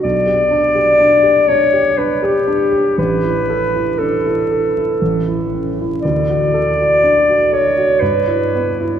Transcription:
X:1
M:3/4
L:1/16
Q:1/4=60
K:D
V:1 name="Clarinet"
d6 c2 B G3 | B4 A6 z2 | d6 c2 B4 |]
V:2 name="Grand piano"
B,,, G D G D G D G D G D G | A,,, E A E D E A E A,,, E C E | D,, F A F D F A F G,, E B, E |]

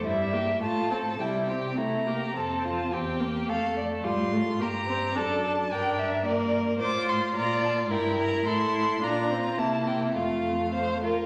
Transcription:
X:1
M:2/4
L:1/8
Q:1/4=107
K:F
V:1 name="Violin"
e2 a2 | g2 b2 | a2 g2 | f d c'2 |
b2 a2 | g e d z | d' c' b a | g b c'2 |
b2 a g | f3 B |]
V:2 name="Violin"
E G F A | E G E G | A F G2 | A2 F2 |
G2 A A | B2 B2 | c2 d2 | B2 A2 |
F2 E2 | F2 c F |]
V:3 name="Viola"
G, B, A, C | G, C A, B, | C2 C B, | A,2 G, A, |
B, C D2 | D2 B,2 | F2 F2 | E2 E2 |
D C B,2 | A,3 z |]
V:4 name="Cello" clef=bass
G,,2 A,,2 | C,3 z | F,,2 E,,2 | F,,2 A,,2 |
G,,2 ^F,,2 | G,,4 | A,,2 B,,2 | G,,2 A,,2 |
B,,2 C,2 | F,,3 z |]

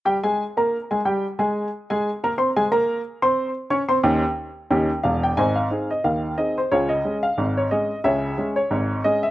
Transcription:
X:1
M:2/4
L:1/16
Q:"Swing 16ths" 1/4=90
K:Ab
V:1 name="Upright piano"
[G,Gg] [A,Aa]2 [B,Bb]2 [A,Aa] [G,Gg]2 | [A,Aa]3 [A,Aa]2 [B,Bb] [Ccc'] [A,Aa] | [B,Bb]3 [Ccc']3 [Ddd'] [Ccc'] | [E,,DEG]2 z2 [E,,DEG]2 f g |
[cea] f2 e f2 e c | [FAd] e2 f2 d e2 | [Ad_f]3 d3 e f |]
V:2 name="Upright piano" clef=bass
z8 | z8 | z8 | z6 [_F,,,_F,,]2 |
[A,,,A,,]2 [CEA]2 [E,,E,]2 [CEA]2 | [D,,D,]2 [A,DA]2 [A,,,A,,]2 [A,DA]2 | [D,,D,]2 [A,DA]2 [A,,,A,,]2 [A,DA]2 |]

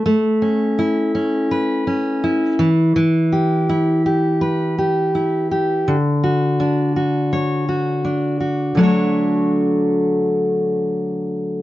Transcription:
X:1
M:4/4
L:1/8
Q:"Swing 16ths" 1/4=83
K:D
V:1 name="Steel-string acoustic guitar"
A, C E C B C E E, | E, G E G B G E G | D, F D F c F D F | [D,F,A,DFc]8 |]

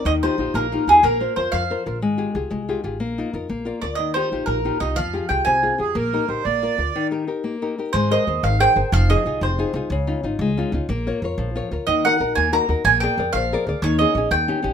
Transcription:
X:1
M:6/8
L:1/16
Q:3/8=122
K:Eb
V:1 name="Mandolin"
e2 c4 B4 A2 | B4 c2 f6 | z12 | z8 z2 d2 |
e2 c4 B4 e2 | f4 g2 a6 | z12 | z12 |
[K:Ab] c2 e4 f2 g4 | f2 e4 c6 | z12 | z12 |
e2 _g4 a2 b4 | a2 g4 f6 | d2 e4 g6 |]
V:2 name="Accordion"
z12 | z12 | z12 | z12 |
z12 | z8 z2 A2 | B4 c2 d6- | d2 z8 z2 |
[K:Ab] z12 | z12 | z12 | z12 |
z12 | z12 | z12 |]
V:3 name="Nylon-string guitar"
E,2 [EFG]2 [EFG]2 B,2 [EFG]2 [EFG]2 | B,2 [FBc]2 [FBc]2 F,2 [FBc]2 [FBc]2 | A,2 [FGA]2 [FGA]2 A,2 [FGA]2 [FGA]2 | B,2 [EFB]2 [EFB]2 B,2 [FBd]2 [FBd]2 |
E,2 [EFG]2 [EFG]2 B,2 [EFG]2 [EFG]2 | F,2 [FGA]2 [FGA]2 C,2 [FA]2 [FGA]2 | B,2 [EGB]2 [EGB]2 B,2 [FBd]2 [FBd]2 | E,2 [EGB]2 [EGB]2 B,2 [EGB]2 [EGB]2 |
[K:Ab] A,2 [ABc]2 [ABc]2 E,2 [ABc]2 [ABc]2 | F,2 [EFA]2 [EFA]2 C,2 [EFA]2 [EFA]2 | D,2 [DEF]2 [DEF]2 A,2 [DEF]2 [DEF]2 | B,2 [FBd]2 [FBd]2 F,2 [FBd]2 [FBd]2 |
E,2 [E_GB]2 [EGB]2 B,2 [EGB]2 [EGB]2 | B,2 [AB=d]2 [ABd]2 F,2 [ABd]2 [ABd]2 | E,2 [DEA]2 [DEA]2 E,2 [DEG]2 [DEG]2 |]
V:4 name="Upright bass" clef=bass
E,,4 B,,,2 B,,,4 E,,2 | B,,,4 F,,2 F,,4 B,,,2 | A,,,4 C,,2 C,,4 A,,,2 | B,,,4 F,,2 B,,,4 D,,2 |
E,,4 B,,,2 B,,,4 C,,2 | F,,4 C,,2 C,,4 F,,2 | B,,,4 B,,,2 B,,,4 D,,2 | z12 |
[K:Ab] A,,,4 E,,2 A,,,4 G,,, z | F,,,4 C,,2 F,,,4 C,, z | D,,4 A,,,2 D,,4 D,, z | B,,,4 F,,2 B,,,4 =D,, z |
E,,4 B,,,2 E,,4 E,, z | B,,,4 F,,2 B,,,4 =D,, z | E,,4 B,,,2 E,,4 =A,,, z |]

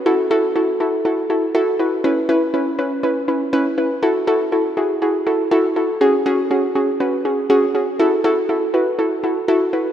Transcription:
X:1
M:4/4
L:1/8
Q:1/4=121
K:F#m
V:1 name="Synth pluck"
[EFA] [EFA] [EFA] [EFA] [EFA] [EFA] [EFA] [EFB] | [CEB] [CEB] [CEB] [CEB] [CEB] [CEB] [CEB] [CEB] | [EFA] [EFA] [EFA] [EFG] [EFG] [EFA] [EFA] [EFA] | [CFG] [CFG] [CFG] [CFG] [CFB] [CFG] [CFG] [CFG] |
[EFA] [EFA] [EFA] [EFB] [EFA] [EFA] [EFA] [EFB] |]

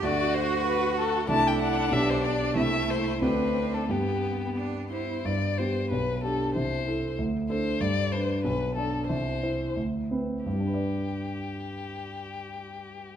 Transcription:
X:1
M:2/4
L:1/16
Q:1/4=91
K:G
V:1 name="Violin"
d2 c2 B2 A2 | a g f2 e c d2 | e2 c2 B3 A | G4 z2 c2 |
d2 c2 B2 A2 | c4 z2 c2 | d2 c2 B2 A2 | c4 z4 |
G8- | G8 |]
V:2 name="Cello"
F8 | E4 D4 | E4 D4 | B,4 D2 E2 |
z8 | z8 | z8 | z8 |
z8 | z8 |]
V:3 name="Grand piano"
[D,,A,DF]8 | [C,,A,DA]4 [B,,,B,DG]4 | [C,,A,CE]4 [D,,A,CF]4 | [G,,G,B,G]8 |
G,,2 [B,G]2 B,,,2 [DG]2 | C,,2 [EA]2 D,,2 [DA]2 | G,,2 [DB]2 B,,,2 [Dd]2 | C,,2 [Ec]2 D,,2 [CB]2 |
[G,,G,DBd]8- | [G,,G,DBd]8 |]
V:4 name="Violin"
F8 | D8 | A,4 C4 | B,6 z2 |
z8 | z8 | z8 | z8 |
z8 | z8 |]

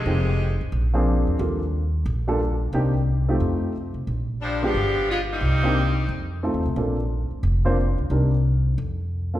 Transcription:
X:1
M:4/4
L:1/8
Q:"Swing" 1/4=179
K:Bb
V:1 name="Grand piano"
[F,_A,CEG] z4 [F,B,CD_A]3 | [G,B,DFA] z4 [G,B,DFA] z2 | [B,CDEG] z2 [A,CEFG]3 z2 | z3 [_A,_CDFG] z4 |
z [B,CDEG] z4 [A,CEFA] z | [B,CDFA] z4 [B,CDFc] z2 | [G,CDEB] z6 [B,CDFA] |]
V:2 name="Saxophone section"
[C,E,_A,]3 z4 z | z8 | z8 | z2 [F,G,CD] [F,_CDG]3 [_A,=B,DF] [G,_B,=CE]- |
[G,B,CE]4- [G,B,CE] z3 | z8 | z8 |]
V:3 name="Upright bass" clef=bass
F,,,3 A,,, B,,,3 =E,, | E,,4 B,,,4 | C,,4 F,,3 C,, | B,,,4 G,,,4 |
C,,4 F,,2- (3F,, E,, C,, | B,,,3 z F,,,3 _D,, | C,,4 F,,4 |]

